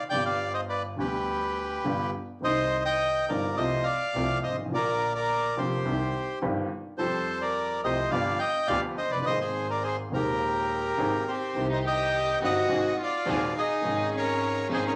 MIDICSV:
0, 0, Header, 1, 6, 480
1, 0, Start_track
1, 0, Key_signature, -3, "minor"
1, 0, Tempo, 574163
1, 106, Time_signature, 4, 2, 24, 8
1, 4426, Tempo, 569260
1, 12574, End_track
2, 0, Start_track
2, 0, Title_t, "Bandoneon"
2, 0, Program_c, 0, 23
2, 80, Note_on_c, 0, 79, 94
2, 88, Note_on_c, 0, 74, 64
2, 195, Note_off_c, 0, 74, 0
2, 204, Note_off_c, 0, 79, 0
2, 208, Note_on_c, 0, 74, 53
2, 213, Note_on_c, 0, 77, 72
2, 440, Note_off_c, 0, 74, 0
2, 443, Note_off_c, 0, 77, 0
2, 450, Note_on_c, 0, 72, 55
2, 451, Note_on_c, 0, 75, 66
2, 508, Note_off_c, 0, 72, 0
2, 509, Note_off_c, 0, 75, 0
2, 579, Note_on_c, 0, 71, 52
2, 579, Note_on_c, 0, 74, 69
2, 689, Note_off_c, 0, 71, 0
2, 689, Note_off_c, 0, 74, 0
2, 832, Note_on_c, 0, 67, 49
2, 835, Note_on_c, 0, 71, 58
2, 1758, Note_off_c, 0, 67, 0
2, 1759, Note_off_c, 0, 71, 0
2, 2039, Note_on_c, 0, 72, 61
2, 2042, Note_on_c, 0, 75, 84
2, 2367, Note_off_c, 0, 75, 0
2, 2370, Note_off_c, 0, 72, 0
2, 2379, Note_on_c, 0, 75, 61
2, 2387, Note_on_c, 0, 79, 82
2, 2720, Note_off_c, 0, 75, 0
2, 2749, Note_on_c, 0, 70, 55
2, 2752, Note_on_c, 0, 74, 63
2, 2760, Note_off_c, 0, 79, 0
2, 2974, Note_off_c, 0, 70, 0
2, 2983, Note_on_c, 0, 75, 74
2, 2988, Note_on_c, 0, 72, 61
2, 2999, Note_off_c, 0, 74, 0
2, 3207, Note_on_c, 0, 77, 79
2, 3212, Note_off_c, 0, 72, 0
2, 3218, Note_on_c, 0, 74, 55
2, 3234, Note_off_c, 0, 75, 0
2, 3664, Note_off_c, 0, 77, 0
2, 3669, Note_off_c, 0, 74, 0
2, 3706, Note_on_c, 0, 75, 62
2, 3708, Note_on_c, 0, 72, 52
2, 3814, Note_off_c, 0, 75, 0
2, 3816, Note_off_c, 0, 72, 0
2, 3962, Note_on_c, 0, 74, 85
2, 3971, Note_on_c, 0, 70, 64
2, 4289, Note_off_c, 0, 74, 0
2, 4293, Note_off_c, 0, 70, 0
2, 4305, Note_on_c, 0, 74, 82
2, 4314, Note_on_c, 0, 70, 56
2, 4645, Note_off_c, 0, 70, 0
2, 4666, Note_on_c, 0, 72, 63
2, 4667, Note_on_c, 0, 67, 50
2, 4676, Note_off_c, 0, 74, 0
2, 5349, Note_off_c, 0, 72, 0
2, 5350, Note_off_c, 0, 67, 0
2, 5846, Note_on_c, 0, 72, 79
2, 5854, Note_on_c, 0, 69, 56
2, 6190, Note_off_c, 0, 69, 0
2, 6211, Note_on_c, 0, 74, 67
2, 6218, Note_on_c, 0, 70, 61
2, 6222, Note_off_c, 0, 72, 0
2, 6547, Note_off_c, 0, 74, 0
2, 6550, Note_off_c, 0, 70, 0
2, 6572, Note_on_c, 0, 75, 70
2, 6580, Note_on_c, 0, 72, 57
2, 6796, Note_off_c, 0, 75, 0
2, 6797, Note_on_c, 0, 77, 66
2, 6800, Note_off_c, 0, 72, 0
2, 6803, Note_on_c, 0, 74, 54
2, 7031, Note_off_c, 0, 74, 0
2, 7036, Note_on_c, 0, 79, 74
2, 7047, Note_on_c, 0, 75, 59
2, 7052, Note_off_c, 0, 77, 0
2, 7273, Note_on_c, 0, 74, 52
2, 7274, Note_off_c, 0, 75, 0
2, 7274, Note_on_c, 0, 77, 77
2, 7293, Note_off_c, 0, 79, 0
2, 7386, Note_off_c, 0, 74, 0
2, 7387, Note_off_c, 0, 77, 0
2, 7530, Note_on_c, 0, 72, 50
2, 7532, Note_on_c, 0, 75, 64
2, 7640, Note_on_c, 0, 74, 61
2, 7644, Note_off_c, 0, 72, 0
2, 7645, Note_off_c, 0, 75, 0
2, 7651, Note_on_c, 0, 71, 50
2, 7759, Note_off_c, 0, 74, 0
2, 7765, Note_off_c, 0, 71, 0
2, 7767, Note_on_c, 0, 75, 81
2, 7772, Note_on_c, 0, 72, 65
2, 7879, Note_off_c, 0, 72, 0
2, 7883, Note_off_c, 0, 75, 0
2, 7891, Note_on_c, 0, 72, 61
2, 7896, Note_on_c, 0, 68, 46
2, 8120, Note_off_c, 0, 68, 0
2, 8141, Note_off_c, 0, 72, 0
2, 8142, Note_on_c, 0, 70, 53
2, 8147, Note_on_c, 0, 74, 60
2, 8248, Note_on_c, 0, 72, 66
2, 8251, Note_off_c, 0, 70, 0
2, 8253, Note_off_c, 0, 74, 0
2, 8258, Note_on_c, 0, 68, 50
2, 8358, Note_off_c, 0, 72, 0
2, 8365, Note_off_c, 0, 68, 0
2, 8508, Note_on_c, 0, 70, 73
2, 8519, Note_on_c, 0, 67, 56
2, 9439, Note_off_c, 0, 67, 0
2, 9474, Note_on_c, 0, 72, 59
2, 9481, Note_on_c, 0, 67, 49
2, 9497, Note_off_c, 0, 70, 0
2, 9806, Note_off_c, 0, 72, 0
2, 9810, Note_off_c, 0, 67, 0
2, 9851, Note_on_c, 0, 72, 49
2, 9853, Note_on_c, 0, 75, 60
2, 9900, Note_off_c, 0, 72, 0
2, 9901, Note_off_c, 0, 75, 0
2, 9969, Note_on_c, 0, 79, 82
2, 9972, Note_on_c, 0, 75, 61
2, 10408, Note_off_c, 0, 79, 0
2, 10409, Note_off_c, 0, 75, 0
2, 10453, Note_on_c, 0, 78, 75
2, 10461, Note_on_c, 0, 75, 60
2, 10894, Note_off_c, 0, 75, 0
2, 10936, Note_off_c, 0, 78, 0
2, 10947, Note_on_c, 0, 77, 66
2, 10953, Note_on_c, 0, 74, 63
2, 11380, Note_off_c, 0, 74, 0
2, 11413, Note_on_c, 0, 68, 56
2, 11416, Note_on_c, 0, 75, 69
2, 11423, Note_off_c, 0, 77, 0
2, 11849, Note_off_c, 0, 68, 0
2, 11850, Note_off_c, 0, 75, 0
2, 11910, Note_on_c, 0, 73, 78
2, 11919, Note_on_c, 0, 70, 62
2, 12333, Note_off_c, 0, 73, 0
2, 12338, Note_off_c, 0, 70, 0
2, 12384, Note_on_c, 0, 68, 60
2, 12385, Note_on_c, 0, 72, 69
2, 12476, Note_off_c, 0, 68, 0
2, 12477, Note_off_c, 0, 72, 0
2, 12501, Note_on_c, 0, 70, 54
2, 12501, Note_on_c, 0, 73, 72
2, 12546, Note_off_c, 0, 70, 0
2, 12546, Note_off_c, 0, 73, 0
2, 12574, End_track
3, 0, Start_track
3, 0, Title_t, "String section"
3, 0, Program_c, 1, 48
3, 9693, Note_on_c, 1, 60, 59
3, 9700, Note_on_c, 1, 63, 57
3, 9701, Note_on_c, 1, 67, 76
3, 10388, Note_off_c, 1, 60, 0
3, 10391, Note_off_c, 1, 63, 0
3, 10392, Note_off_c, 1, 67, 0
3, 10420, Note_on_c, 1, 63, 61
3, 10422, Note_on_c, 1, 67, 68
3, 10424, Note_on_c, 1, 60, 62
3, 10627, Note_off_c, 1, 63, 0
3, 10628, Note_off_c, 1, 67, 0
3, 10629, Note_off_c, 1, 60, 0
3, 10661, Note_on_c, 1, 60, 56
3, 10668, Note_on_c, 1, 66, 50
3, 10671, Note_on_c, 1, 68, 59
3, 10867, Note_off_c, 1, 60, 0
3, 10871, Note_off_c, 1, 66, 0
3, 10872, Note_off_c, 1, 68, 0
3, 11155, Note_on_c, 1, 60, 73
3, 11155, Note_on_c, 1, 68, 81
3, 11156, Note_on_c, 1, 66, 64
3, 11355, Note_off_c, 1, 60, 0
3, 11355, Note_off_c, 1, 66, 0
3, 11355, Note_off_c, 1, 68, 0
3, 11631, Note_on_c, 1, 63, 68
3, 11632, Note_on_c, 1, 61, 73
3, 11635, Note_on_c, 1, 68, 74
3, 12310, Note_off_c, 1, 61, 0
3, 12310, Note_off_c, 1, 63, 0
3, 12312, Note_off_c, 1, 68, 0
3, 12352, Note_on_c, 1, 61, 72
3, 12355, Note_on_c, 1, 63, 69
3, 12359, Note_on_c, 1, 68, 78
3, 12548, Note_off_c, 1, 61, 0
3, 12550, Note_off_c, 1, 63, 0
3, 12552, Note_off_c, 1, 68, 0
3, 12574, End_track
4, 0, Start_track
4, 0, Title_t, "Violin"
4, 0, Program_c, 2, 40
4, 9469, Note_on_c, 2, 60, 61
4, 9803, Note_off_c, 2, 60, 0
4, 9824, Note_on_c, 2, 63, 55
4, 9879, Note_off_c, 2, 63, 0
4, 9944, Note_on_c, 2, 67, 59
4, 10395, Note_off_c, 2, 67, 0
4, 10420, Note_on_c, 2, 66, 76
4, 10872, Note_off_c, 2, 66, 0
4, 10913, Note_on_c, 2, 65, 59
4, 11358, Note_off_c, 2, 65, 0
4, 11395, Note_on_c, 2, 63, 61
4, 11839, Note_off_c, 2, 63, 0
4, 11884, Note_on_c, 2, 61, 55
4, 12320, Note_off_c, 2, 61, 0
4, 12364, Note_on_c, 2, 60, 67
4, 12466, Note_off_c, 2, 60, 0
4, 12487, Note_on_c, 2, 61, 55
4, 12535, Note_off_c, 2, 61, 0
4, 12574, End_track
5, 0, Start_track
5, 0, Title_t, "Upright piano"
5, 0, Program_c, 3, 0
5, 91, Note_on_c, 3, 50, 56
5, 101, Note_on_c, 3, 55, 45
5, 106, Note_on_c, 3, 43, 60
5, 109, Note_on_c, 3, 31, 64
5, 115, Note_on_c, 3, 59, 51
5, 124, Note_on_c, 3, 67, 62
5, 784, Note_off_c, 3, 50, 0
5, 789, Note_off_c, 3, 55, 0
5, 791, Note_off_c, 3, 43, 0
5, 793, Note_off_c, 3, 31, 0
5, 796, Note_off_c, 3, 59, 0
5, 801, Note_off_c, 3, 67, 0
5, 806, Note_on_c, 3, 50, 52
5, 817, Note_on_c, 3, 55, 50
5, 818, Note_off_c, 3, 50, 0
5, 823, Note_on_c, 3, 38, 65
5, 823, Note_on_c, 3, 50, 60
5, 833, Note_on_c, 3, 59, 44
5, 837, Note_on_c, 3, 67, 54
5, 1508, Note_off_c, 3, 55, 0
5, 1511, Note_off_c, 3, 38, 0
5, 1511, Note_off_c, 3, 50, 0
5, 1515, Note_off_c, 3, 59, 0
5, 1518, Note_off_c, 3, 67, 0
5, 1540, Note_on_c, 3, 50, 63
5, 1544, Note_on_c, 3, 55, 57
5, 1545, Note_on_c, 3, 43, 69
5, 1546, Note_on_c, 3, 31, 76
5, 1546, Note_on_c, 3, 59, 54
5, 1549, Note_on_c, 3, 67, 70
5, 1746, Note_off_c, 3, 50, 0
5, 1748, Note_off_c, 3, 43, 0
5, 1748, Note_off_c, 3, 55, 0
5, 1749, Note_off_c, 3, 31, 0
5, 1749, Note_off_c, 3, 59, 0
5, 1751, Note_off_c, 3, 67, 0
5, 2010, Note_on_c, 3, 51, 45
5, 2021, Note_on_c, 3, 55, 51
5, 2024, Note_on_c, 3, 48, 53
5, 2027, Note_on_c, 3, 36, 54
5, 2031, Note_on_c, 3, 60, 47
5, 2044, Note_on_c, 3, 63, 55
5, 2706, Note_off_c, 3, 51, 0
5, 2711, Note_off_c, 3, 55, 0
5, 2713, Note_off_c, 3, 48, 0
5, 2714, Note_off_c, 3, 36, 0
5, 2716, Note_off_c, 3, 60, 0
5, 2723, Note_off_c, 3, 63, 0
5, 2756, Note_on_c, 3, 50, 57
5, 2758, Note_on_c, 3, 55, 48
5, 2760, Note_on_c, 3, 31, 59
5, 2760, Note_on_c, 3, 43, 63
5, 2764, Note_on_c, 3, 60, 47
5, 2765, Note_on_c, 3, 63, 57
5, 2955, Note_off_c, 3, 50, 0
5, 2957, Note_off_c, 3, 31, 0
5, 2957, Note_off_c, 3, 55, 0
5, 2958, Note_off_c, 3, 43, 0
5, 2959, Note_off_c, 3, 60, 0
5, 2960, Note_off_c, 3, 63, 0
5, 2987, Note_on_c, 3, 48, 71
5, 2988, Note_on_c, 3, 57, 55
5, 2990, Note_on_c, 3, 53, 58
5, 2991, Note_on_c, 3, 36, 68
5, 2995, Note_on_c, 3, 65, 66
5, 3191, Note_off_c, 3, 57, 0
5, 3192, Note_off_c, 3, 53, 0
5, 3193, Note_off_c, 3, 36, 0
5, 3193, Note_off_c, 3, 48, 0
5, 3195, Note_off_c, 3, 65, 0
5, 3474, Note_on_c, 3, 48, 76
5, 3476, Note_on_c, 3, 53, 59
5, 3477, Note_on_c, 3, 36, 70
5, 3480, Note_on_c, 3, 57, 64
5, 3480, Note_on_c, 3, 65, 69
5, 3674, Note_off_c, 3, 53, 0
5, 3675, Note_off_c, 3, 36, 0
5, 3676, Note_off_c, 3, 48, 0
5, 3676, Note_off_c, 3, 57, 0
5, 3676, Note_off_c, 3, 65, 0
5, 3772, Note_on_c, 3, 31, 38
5, 3826, Note_on_c, 3, 32, 49
5, 3830, Note_off_c, 3, 31, 0
5, 3887, Note_off_c, 3, 32, 0
5, 3891, Note_on_c, 3, 33, 59
5, 3929, Note_on_c, 3, 50, 55
5, 3944, Note_on_c, 3, 53, 45
5, 3946, Note_on_c, 3, 46, 65
5, 3947, Note_on_c, 3, 34, 62
5, 3949, Note_off_c, 3, 33, 0
5, 3958, Note_on_c, 3, 58, 51
5, 3964, Note_on_c, 3, 65, 60
5, 4620, Note_off_c, 3, 50, 0
5, 4628, Note_off_c, 3, 53, 0
5, 4629, Note_off_c, 3, 34, 0
5, 4629, Note_off_c, 3, 46, 0
5, 4635, Note_off_c, 3, 58, 0
5, 4638, Note_off_c, 3, 65, 0
5, 4659, Note_on_c, 3, 50, 55
5, 4661, Note_on_c, 3, 53, 48
5, 4662, Note_on_c, 3, 41, 65
5, 4665, Note_on_c, 3, 29, 60
5, 4665, Note_on_c, 3, 58, 48
5, 4670, Note_on_c, 3, 65, 64
5, 4864, Note_off_c, 3, 50, 0
5, 4865, Note_off_c, 3, 41, 0
5, 4865, Note_off_c, 3, 53, 0
5, 4867, Note_off_c, 3, 29, 0
5, 4867, Note_off_c, 3, 58, 0
5, 4870, Note_off_c, 3, 65, 0
5, 4896, Note_on_c, 3, 36, 80
5, 4897, Note_on_c, 3, 55, 65
5, 4899, Note_on_c, 3, 60, 60
5, 4902, Note_on_c, 3, 48, 74
5, 4902, Note_on_c, 3, 51, 66
5, 4904, Note_on_c, 3, 67, 68
5, 5102, Note_off_c, 3, 36, 0
5, 5102, Note_off_c, 3, 55, 0
5, 5103, Note_off_c, 3, 60, 0
5, 5105, Note_off_c, 3, 48, 0
5, 5105, Note_off_c, 3, 51, 0
5, 5106, Note_off_c, 3, 67, 0
5, 5373, Note_on_c, 3, 51, 74
5, 5374, Note_on_c, 3, 55, 61
5, 5374, Note_on_c, 3, 60, 64
5, 5377, Note_on_c, 3, 31, 78
5, 5377, Note_on_c, 3, 43, 86
5, 5381, Note_on_c, 3, 67, 78
5, 5578, Note_off_c, 3, 51, 0
5, 5578, Note_off_c, 3, 55, 0
5, 5578, Note_off_c, 3, 60, 0
5, 5580, Note_off_c, 3, 31, 0
5, 5580, Note_off_c, 3, 43, 0
5, 5582, Note_off_c, 3, 67, 0
5, 5844, Note_on_c, 3, 53, 67
5, 5852, Note_on_c, 3, 55, 51
5, 5857, Note_on_c, 3, 41, 65
5, 5868, Note_on_c, 3, 60, 50
5, 5877, Note_on_c, 3, 67, 66
5, 6536, Note_off_c, 3, 55, 0
5, 6539, Note_off_c, 3, 41, 0
5, 6539, Note_off_c, 3, 53, 0
5, 6544, Note_off_c, 3, 60, 0
5, 6549, Note_off_c, 3, 67, 0
5, 6573, Note_on_c, 3, 53, 52
5, 6575, Note_on_c, 3, 57, 59
5, 6576, Note_on_c, 3, 36, 65
5, 6577, Note_on_c, 3, 48, 70
5, 6577, Note_on_c, 3, 67, 66
5, 6578, Note_on_c, 3, 60, 51
5, 6775, Note_off_c, 3, 53, 0
5, 6776, Note_off_c, 3, 36, 0
5, 6776, Note_off_c, 3, 57, 0
5, 6777, Note_off_c, 3, 48, 0
5, 6777, Note_off_c, 3, 60, 0
5, 6777, Note_off_c, 3, 67, 0
5, 6803, Note_on_c, 3, 53, 67
5, 6803, Note_on_c, 3, 59, 59
5, 6806, Note_on_c, 3, 31, 85
5, 6807, Note_on_c, 3, 62, 59
5, 6809, Note_on_c, 3, 43, 82
5, 6812, Note_on_c, 3, 67, 77
5, 7009, Note_off_c, 3, 53, 0
5, 7009, Note_off_c, 3, 59, 0
5, 7011, Note_off_c, 3, 31, 0
5, 7012, Note_off_c, 3, 43, 0
5, 7012, Note_off_c, 3, 62, 0
5, 7013, Note_off_c, 3, 67, 0
5, 7290, Note_on_c, 3, 53, 69
5, 7294, Note_on_c, 3, 67, 82
5, 7296, Note_on_c, 3, 38, 76
5, 7296, Note_on_c, 3, 62, 66
5, 7297, Note_on_c, 3, 50, 84
5, 7298, Note_on_c, 3, 59, 61
5, 7494, Note_off_c, 3, 53, 0
5, 7496, Note_off_c, 3, 67, 0
5, 7497, Note_off_c, 3, 38, 0
5, 7497, Note_off_c, 3, 62, 0
5, 7498, Note_off_c, 3, 50, 0
5, 7498, Note_off_c, 3, 59, 0
5, 7597, Note_on_c, 3, 29, 41
5, 7656, Note_off_c, 3, 29, 0
5, 7658, Note_on_c, 3, 30, 52
5, 7716, Note_on_c, 3, 31, 56
5, 7717, Note_off_c, 3, 30, 0
5, 7766, Note_on_c, 3, 51, 49
5, 7776, Note_off_c, 3, 31, 0
5, 7778, Note_on_c, 3, 58, 48
5, 7781, Note_on_c, 3, 32, 61
5, 7784, Note_on_c, 3, 44, 65
5, 7791, Note_on_c, 3, 60, 50
5, 7799, Note_on_c, 3, 68, 57
5, 8456, Note_off_c, 3, 51, 0
5, 8462, Note_off_c, 3, 58, 0
5, 8463, Note_off_c, 3, 32, 0
5, 8465, Note_off_c, 3, 44, 0
5, 8469, Note_off_c, 3, 60, 0
5, 8472, Note_off_c, 3, 68, 0
5, 8476, Note_on_c, 3, 51, 54
5, 8490, Note_on_c, 3, 58, 52
5, 8494, Note_on_c, 3, 27, 70
5, 8495, Note_on_c, 3, 39, 58
5, 8500, Note_on_c, 3, 60, 51
5, 8513, Note_on_c, 3, 56, 54
5, 9173, Note_off_c, 3, 51, 0
5, 9180, Note_off_c, 3, 58, 0
5, 9182, Note_off_c, 3, 27, 0
5, 9183, Note_off_c, 3, 39, 0
5, 9185, Note_off_c, 3, 60, 0
5, 9192, Note_off_c, 3, 56, 0
5, 9218, Note_on_c, 3, 44, 76
5, 9218, Note_on_c, 3, 51, 60
5, 9220, Note_on_c, 3, 32, 81
5, 9220, Note_on_c, 3, 58, 59
5, 9223, Note_on_c, 3, 60, 61
5, 9223, Note_on_c, 3, 68, 72
5, 9422, Note_off_c, 3, 44, 0
5, 9422, Note_off_c, 3, 51, 0
5, 9423, Note_off_c, 3, 32, 0
5, 9423, Note_off_c, 3, 58, 0
5, 9425, Note_off_c, 3, 60, 0
5, 9425, Note_off_c, 3, 68, 0
5, 9695, Note_on_c, 3, 51, 53
5, 9704, Note_on_c, 3, 55, 44
5, 9707, Note_on_c, 3, 48, 65
5, 9709, Note_on_c, 3, 36, 61
5, 9714, Note_on_c, 3, 60, 43
5, 9725, Note_on_c, 3, 67, 56
5, 10389, Note_off_c, 3, 51, 0
5, 10393, Note_off_c, 3, 55, 0
5, 10395, Note_off_c, 3, 48, 0
5, 10396, Note_off_c, 3, 36, 0
5, 10398, Note_off_c, 3, 60, 0
5, 10403, Note_off_c, 3, 67, 0
5, 10429, Note_on_c, 3, 55, 49
5, 10430, Note_on_c, 3, 51, 53
5, 10432, Note_on_c, 3, 67, 53
5, 10433, Note_on_c, 3, 31, 63
5, 10434, Note_on_c, 3, 60, 47
5, 10437, Note_on_c, 3, 43, 65
5, 10632, Note_off_c, 3, 51, 0
5, 10632, Note_off_c, 3, 55, 0
5, 10633, Note_off_c, 3, 67, 0
5, 10634, Note_off_c, 3, 31, 0
5, 10634, Note_off_c, 3, 60, 0
5, 10636, Note_off_c, 3, 43, 0
5, 10657, Note_on_c, 3, 32, 71
5, 10658, Note_on_c, 3, 44, 82
5, 10660, Note_on_c, 3, 56, 59
5, 10662, Note_on_c, 3, 51, 63
5, 10663, Note_on_c, 3, 60, 55
5, 10663, Note_on_c, 3, 66, 66
5, 10865, Note_off_c, 3, 32, 0
5, 10866, Note_off_c, 3, 44, 0
5, 10867, Note_off_c, 3, 56, 0
5, 10868, Note_off_c, 3, 51, 0
5, 10869, Note_off_c, 3, 60, 0
5, 10869, Note_off_c, 3, 66, 0
5, 11137, Note_on_c, 3, 56, 63
5, 11139, Note_on_c, 3, 27, 84
5, 11139, Note_on_c, 3, 51, 66
5, 11142, Note_on_c, 3, 39, 77
5, 11143, Note_on_c, 3, 60, 65
5, 11145, Note_on_c, 3, 66, 81
5, 11346, Note_off_c, 3, 56, 0
5, 11347, Note_off_c, 3, 27, 0
5, 11347, Note_off_c, 3, 51, 0
5, 11348, Note_off_c, 3, 39, 0
5, 11349, Note_off_c, 3, 60, 0
5, 11349, Note_off_c, 3, 66, 0
5, 11609, Note_on_c, 3, 51, 54
5, 11624, Note_on_c, 3, 56, 53
5, 11628, Note_on_c, 3, 44, 59
5, 11632, Note_on_c, 3, 32, 61
5, 11634, Note_on_c, 3, 61, 46
5, 11648, Note_on_c, 3, 68, 63
5, 12299, Note_off_c, 3, 51, 0
5, 12306, Note_off_c, 3, 56, 0
5, 12308, Note_off_c, 3, 44, 0
5, 12310, Note_off_c, 3, 32, 0
5, 12311, Note_off_c, 3, 61, 0
5, 12318, Note_off_c, 3, 68, 0
5, 12346, Note_on_c, 3, 51, 57
5, 12349, Note_on_c, 3, 56, 57
5, 12351, Note_on_c, 3, 44, 64
5, 12352, Note_on_c, 3, 32, 64
5, 12354, Note_on_c, 3, 61, 53
5, 12355, Note_on_c, 3, 68, 65
5, 12545, Note_off_c, 3, 51, 0
5, 12547, Note_off_c, 3, 56, 0
5, 12548, Note_off_c, 3, 32, 0
5, 12548, Note_off_c, 3, 44, 0
5, 12549, Note_off_c, 3, 61, 0
5, 12550, Note_off_c, 3, 68, 0
5, 12574, End_track
6, 0, Start_track
6, 0, Title_t, "Double bass"
6, 0, Program_c, 4, 43
6, 104, Note_on_c, 4, 31, 76
6, 791, Note_off_c, 4, 31, 0
6, 817, Note_on_c, 4, 38, 78
6, 1507, Note_off_c, 4, 38, 0
6, 1538, Note_on_c, 4, 31, 82
6, 1745, Note_off_c, 4, 31, 0
6, 2015, Note_on_c, 4, 36, 69
6, 2708, Note_off_c, 4, 36, 0
6, 2742, Note_on_c, 4, 31, 78
6, 2948, Note_off_c, 4, 31, 0
6, 2976, Note_on_c, 4, 36, 60
6, 3185, Note_off_c, 4, 36, 0
6, 3461, Note_on_c, 4, 36, 83
6, 3667, Note_off_c, 4, 36, 0
6, 3709, Note_on_c, 4, 32, 53
6, 3933, Note_off_c, 4, 32, 0
6, 3938, Note_on_c, 4, 34, 70
6, 4625, Note_off_c, 4, 34, 0
6, 4655, Note_on_c, 4, 29, 84
6, 4862, Note_off_c, 4, 29, 0
6, 4897, Note_on_c, 4, 36, 66
6, 5102, Note_off_c, 4, 36, 0
6, 5376, Note_on_c, 4, 31, 83
6, 5579, Note_off_c, 4, 31, 0
6, 5853, Note_on_c, 4, 41, 73
6, 6537, Note_off_c, 4, 41, 0
6, 6567, Note_on_c, 4, 36, 87
6, 6771, Note_off_c, 4, 36, 0
6, 6803, Note_on_c, 4, 31, 77
6, 7009, Note_off_c, 4, 31, 0
6, 7276, Note_on_c, 4, 38, 83
6, 7487, Note_off_c, 4, 38, 0
6, 7514, Note_on_c, 4, 30, 54
6, 7748, Note_off_c, 4, 30, 0
6, 7753, Note_on_c, 4, 32, 80
6, 8449, Note_off_c, 4, 32, 0
6, 8476, Note_on_c, 4, 39, 75
6, 9173, Note_off_c, 4, 39, 0
6, 9213, Note_on_c, 4, 32, 72
6, 9420, Note_off_c, 4, 32, 0
6, 9695, Note_on_c, 4, 36, 70
6, 10389, Note_off_c, 4, 36, 0
6, 10409, Note_on_c, 4, 31, 76
6, 10621, Note_off_c, 4, 31, 0
6, 10658, Note_on_c, 4, 32, 66
6, 10866, Note_off_c, 4, 32, 0
6, 11143, Note_on_c, 4, 39, 84
6, 11349, Note_off_c, 4, 39, 0
6, 11631, Note_on_c, 4, 32, 81
6, 12310, Note_off_c, 4, 32, 0
6, 12349, Note_on_c, 4, 32, 77
6, 12547, Note_off_c, 4, 32, 0
6, 12574, End_track
0, 0, End_of_file